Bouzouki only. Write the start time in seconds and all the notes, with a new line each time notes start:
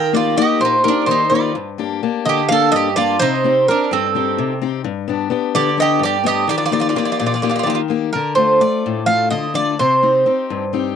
Already playing: G5
0.14 D5
0.38 D#5
0.61 C5
0.84 A#4
1.06 C5
1.30 D5
2.26 D#5
2.49 F5
2.72 D#5
2.96 D5
3.20 C5
3.68 A#4
3.93 A4
5.55 D5
5.80 D#5
6.03 D5
6.26 D#5
6.49 D5
6.58 D5
6.66 D5
6.73 D5
6.81 D5
6.89 D5
6.98 D5
7.05 D5
7.12 D5
7.20 D5
7.26 D5
7.34 D5
7.42 D5
7.49 D5
7.56 D5
7.63 D5
7.70 D5
8.13 A#4
8.35 C5
8.61 D5
9.06 F5
9.31 D#5
9.55 D5
9.79 C5